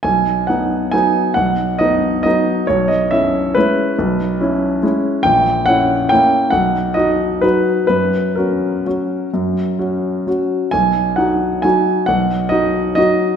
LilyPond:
\new Staff \with { instrumentName = "Grand piano" } { \time 3/4 \key b \major \tempo 4 = 135 << { gis''4 fis''4 gis''4 | fis''4 dis''4 dis''4 | cis''8 dis''8 e''4 b'4~ | b'2. |
g''4 fis''4 g''4 | fis''4 dis''4 b'4 | b'4 ais'2~ | ais'2 r4 |
gis''4 fis''4 gis''4 | fis''4 dis''4 dis''4 | } \\ { b,,4 <b dis'>4 <fis b dis'>4 | b,,4 <b dis'>4 <fis b dis'>4 | b,,4 <cis' e'>4 <gis cis' e'>4 | b,,4 <cis' e'>4 <gis cis' e'>4 |
ais,,4 <cis' e'>4 <ais cis' e'>4 | b,,4 <dis' fis'>4 <fis dis' fis'>4 | fis,4 <cis' fis'>4 <fis cis' fis'>4 | fis,4 <cis' fis'>4 <fis cis' fis'>4 |
b,,4 <dis' fis'>4 <fis dis' fis'>4 | b,,4 <dis' fis'>4 <fis dis' fis'>4 | } >> }